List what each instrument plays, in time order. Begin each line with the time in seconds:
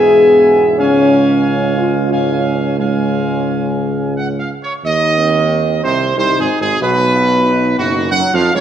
Already playing: tuba E1, trombone section G#2 B3, french horn section G#4, trumpet section E5 G#5
0.78 tuba C#2, trombone section G#2 C#4, french horn section C#4, trumpet section F5 G#5
1.77 french horn section F4
2.10 trombone section G#2 C#4, french horn section F4, trumpet section F5 G#5
2.34 french horn section C#4
2.55 french horn section C#4
2.78 trombone section G#2 C#4, french horn section G#3, trumpet section F5 G#5
4.16 trumpet section F#5
4.40 trumpet section F5
4.63 trumpet section C#5
4.84 tuba D#2, trombone section D#3, french horn section D#4, trumpet section D#5
5.17 french horn section C4
5.84 tuba C2, trombone section C3, trumpet section C5
6.16 tuba C2, trombone section C3, french horn section D#4, trumpet section C5
6.39 tuba G#1, trombone section G#2, trumpet section G#4
6.60 tuba G#1, trombone section G#2, trumpet section G#4
6.81 tuba B1, trombone section B2, french horn section F#4, trumpet section B4
7.14 french horn section F4
7.46 french horn section D#4
7.77 tuba F#1, trombone section F#2, trumpet section F#4
8.10 tuba F#2, trombone section F#3, trumpet section F#5
8.33 tuba F2, trombone section F3, trumpet section F5
8.53 tuba C#2, trombone section C#3, trumpet section C#5